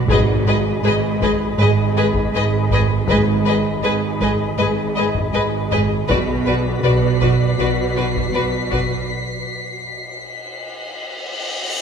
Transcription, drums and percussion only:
0.08 taiko loud
1.21 taiko medium
2.14 taiko medium
2.71 taiko medium
3.08 taiko loud
4.21 taiko medium
5.15 taiko medium
5.72 taiko medium
6.09 taiko medium
7.22 taiko medium
8.15 taiko medium
8.71 taiko medium

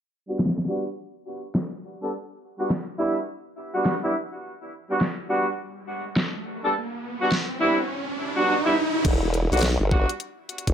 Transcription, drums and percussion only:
0.39 snare loud
0.46 snare medium
0.49 snare medium
0.58 snare medium
0.58 snare soft
0.65 snare soft
1.55 snare loud
2.70 snare loud
3.85 snare loud
5.01 snare loud
6.16 snare loud
7.32 snare loud
9.05 kick loud
9.05 closed hi-hat medium
9.05 crash medium
9.34 closed hi-hat soft
9.52 closed hi-hat soft
9.54 closed hi-hat soft
9.57 closed hi-hat soft
9.59 closed hi-hat soft
9.61 snare loud
9.61 closed hi-hat soft
9.62 closed hi-hat medium
9.91 kick loud
10.09 closed hi-hat medium
10.20 closed hi-hat medium
10.49 closed hi-hat soft
10.58 closed hi-hat medium
10.67 kick medium
10.67 closed hi-hat medium

